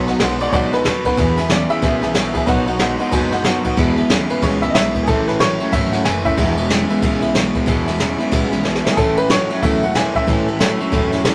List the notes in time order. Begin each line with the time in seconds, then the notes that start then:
Already playing: B1 B2 F#3
0.06 B3 D#4 F#4 B4 D#5 F#5, snare, ride
0.19 B1 B2 F#3 G#3 B3 D#4 F#4 B4 D#5 F#5, snare, ride
0.39 B2 G#3 B3 D#4 F#4 B4 D5 D#5 F#5, ride
0.49 B2 B4 C#5, snare, ride
0.53 C#2 B2 F#3 G#3 B3 D#4 F#4 D5 D#5 F#5, kick
0.71 B3 D#4 F#4 B4 D#5 G#5, snare, ride
0.84 D#2 B2 F#3 B3 D#4 F#4 B4 D#5 A5, snare, ride
1.04 B2 F#3 D#4 F#4 B4 D#5 F#5, kick, ride
1.08 B3
1.17 E2 B2 E3 B3 E4 G#4 B4 E5 G#5, kick, snare, ride
1.37 E3 B3 E4 G#4 B4 E5 G#5, snare, ride
1.49 E2 C#3 E3 B3 E4 B4 D5 E5 G#5, snare, ride
1.54 G#4
1.69 E2 C#3 B3 E4 G#4 B4 E5 G#5, ride
1.73 E3
1.82 B1 E2 B2 C#3 E3 B3 E4 G#4 B4 E5 G#5, kick, snare, ride
2.02 E3 B3 E4 G#4 B4 E5 G#5, snare, ride
2.14 E2 B2 E3 B3 E4 G#4 B4 E5 G#5, snare, ride
2.33 E2 B2 E3 B3 E4 G#4 B4 E5 G#5, kick, ride
2.46 B1 B2 F#3 B3 D#4 F#4 B4 D#5 F#5, kick, ride
2.66 B3 D#4 F#4 B4 D#5 F#5, ride
2.78 B2 F#3 G#3 B3 D#4 F#4 B4 D#5 F#5, snare, ride
2.97 B2 G#3 B3 D#4 F#4 B4 D#5 F#5, ride
3.11 F#1 B2 F#3 G#3 B3 D#4 F#4 B4 D#5 G#5, kick, ride
3.31 B3 D#4 F#4 B4 D#5 F#5, snare, ride
3.44 B2 F#3 B3 D#4 F#4 B4 D#5 F#5, snare, ride
3.63 B2 F#3 D#4 F#4 B4 D#5 F#5, kick, ride
3.68 B3
3.77 E2 B2 E3 G#3 B3 E4, kick, crash
3.96 E3 G#3 B3 E4, ride
4.10 D#2 E2 C#3 E3 G#3 B3 E4, snare, ride
4.29 E2 C#3 E3 G#3 B3 E4 B4, ride
4.42 C#2 E2 B2 C#3 E3 G#3 B3 E4 C#5, kick, snare, ride
4.62 E3 G#3 B3 E4 E5, ride
4.70 E3 D#5
4.75 B1 E2 B2 G#3 B3 E4 E5, snare, ride
4.94 E2 B2 E3 G#3 B3 E4, kick, ride
5.03 A2 G#4
5.07 A1 A2 E3 A3 C#4 E4 A4, kick, ride
5.26 A3 C#4 E4 B4, snare, ride
5.39 A2 E3 F#3 A3 C#4 E4 C#5, snare, ride
5.60 A2 F#3 A3 C#4 E4, ride
5.72 G#1 A2 E3 F#3 A3 C#4 E4 E5, kick, snare, ride
5.92 A3 C#4 E4 F#5, snare, ride
6.04 F#1 A2 E3 A3 C#4 E4 G#5, snare, ride
6.25 A2 E3 A3 C#4 E4 E5, kick, ride
6.37 E1 E2 B2 E3 G#3 B3 E4, kick, snare, ride
6.57 E3 G#3 B3 E4, ride
6.69 E2 C#3 E3 G#3 B3 E4, snare, ride
6.89 E2 C#3 E3 G#3 B3 E4, ride
7.02 B1 E2 B2 C#3 E3 G#3 B3 E4, kick, snare, ride
7.21 E3 G#3 B3 E4, ride
7.34 E2 B2 E3 G#3 B3 E4, snare, ride
7.54 E2 B2 E3 G#3 B3 E4, kick, ride
7.66 E1 E2 B2 E3 G#3 B3 E4, kick, snare, ride
7.86 E3 G#3 B3 E4, snare, ride
7.98 E2 C#3 E3 G#3 B3 E4, snare, ride
8.18 E2 C#3 E3 G#3 B3 E4, ride
8.31 B1 E2 B2 C#3 E3 G#3 B3 E4, kick, snare, ride
8.51 E3 G#3 B3 E4, snare, ride
8.64 E2 B2 E3 G#3 B3 E4, snare
8.75 snare
8.84 E2 B2 E3 G#3 B3 E4, snare
8.92 A2 G#4
8.97 A1 A2 E3 A3 C#4 E4 A4, kick, snare, ride
9.16 A3 C#4 E4 B4, ride
9.29 A2 E3 F#3 A3 C#4 E4 C#5, snare, ride
9.49 A2 F#3 A3 C#4 E4, ride
9.62 E1 A2 E3 F#3 A3 C#4 E4 E5, kick, snare, ride
9.82 A3 C#4 E4 F#5, ride
9.94 A2 E3 A3 C#4 E4 G#5, snare, ride
10.13 A2 E3 A3 C#4 E4 E5, kick, ride
10.27 A1 A2 E3 A3 C#4 E4, kick, snare, ride
10.47 A3 C#4 E4, ride
10.59 A2 E3 F#3 A3 C#4 E4, snare, ride
10.79 A2 F#3 A3 C#4 E4, ride
10.92 E1 A2 E3 F#3 A3 C#4 E4, kick, snare, ride
11.12 A3 C#4 E4, snare, ride
11.25 A2 E3 A3 C#4 E4, snare, ride